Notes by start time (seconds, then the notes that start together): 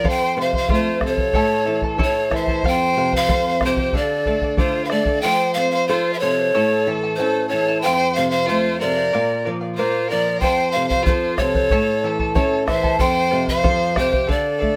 Already playing: D5
0.04 F2 A4 C5 F5, bombo low
0.10 G5
0.37 C3 A4 C5 F5
0.41 F5
0.53 C5 F5, bombo low
0.58 F5
0.69 A3 F4 A4 C5 F5, bombo low
0.74 C5
1.01 C3 A4 C5 F5, bombo rim, bombo low
1.06 C#5
1.17 C5 F5, bombo low
1.33 A2 E4 A4 C#5 E5 A5, bombo low
1.66 E3 E4 A4 E5 A5
1.82 E4 A4 A5, bombo low
1.98 E4 A4 C#5 E5 A5, bombo low
2.03 A4 C#5
2.31 E3 E4 A4 E5 A5, bombo rim, bombo low
2.36 C5 E5
2.47 E4 A4 A5, bombo low
2.64 F2 A4 C5 F5 G5, bombo low
2.70 C5
2.97 C3 A4 C5 F5
3.12 C5 F5, bombo low
3.16 C5 F5
3.28 C4 A4 C5 F5, bombo low
3.61 C3 A4 C5 F5, bombo rim, bombo low
3.66 G4 C5
3.77 C5 F5, bombo low
3.93 D3 A4 D5 F5, bombo low
4.00 A4
4.26 A3 A4 D5 F5, bombo low
4.41 D5 F5, bombo low
4.57 F4 A4 C5 D5 F5, bombo low
4.85 C5 F5
4.90 A3 A4 D5 F5, bombo rim
5.06 D5 F5, bombo low
5.21 F3 A4 C5 F5 G5
5.54 C4 A4 C5 F5
5.58 C5
5.71 C5 F5
5.88 F4 A4 C5 F5
6.13 C5 E5
6.19 C3 A4 C5 C#5 F5
6.39 C5 F5
6.54 A2 E4 A4 C#5 E5 A5
6.87 E3 E4 A4 E5 A5
7.04 E4 A4 A5
7.16 E4 A4 C5 E5 A5
7.20 C#4
7.48 E4 A4 C#5 E5 A5
7.53 E3
7.68 E4 A4 A5
7.82 A4 C5 G5
7.86 F2 F5
8.13 A4 C5 F5
8.18 C3 F5
8.29 C5 F5
8.46 A3 F4 A4 C5 F5
8.80 C3 A4 A#4 C5 D5 F5
8.96 C5 F5
9.13 A#2 A#4 D5 F5
9.45 F3 A#4 D5 F5
9.61 D5 F5
9.75 A#3 F4 A#4 C5 D5
9.80 F5
10.08 A#4 D5 F5
10.12 F3
10.27 D5 F5
10.40 A4 C5 F5 G5, bombo low
10.45 F2
10.71 C5 F5
10.76 C3 A4 C5 F5
10.88 C5 F5, bombo low
10.93 C5
11.03 F4 C5, bombo low
11.08 F3 A4 C5 F5
11.37 C3 A4 C5 C#5, bombo rim, bombo low
11.42 F5
11.55 C5 F5, bombo low
11.70 A2 E4 A4 C#5 E5 A5, bombo low
12.03 E3 E4 A4 E5 A5
12.19 E4 A4 A5, bombo low
12.35 C#4 E4 A4 C#5 E5 A5, bombo low
12.67 E3 E4 A4 C5 E5 A5, bombo rim, bombo low
12.83 E4 A4 A5, bombo low
12.99 F2 A4 C5 F5 G5, bombo low
13.30 C3 A4 C5 F5
13.47 C5 F5, bombo low
13.63 F3 A4 C5 F5, bombo low
13.94 C3 G4 A4 C5 F5, bombo rim, bombo low
14.12 C5 F5, bombo low
14.27 D3 A4 D5 F5, bombo low
14.59 A3 A4 D5 F5, bombo low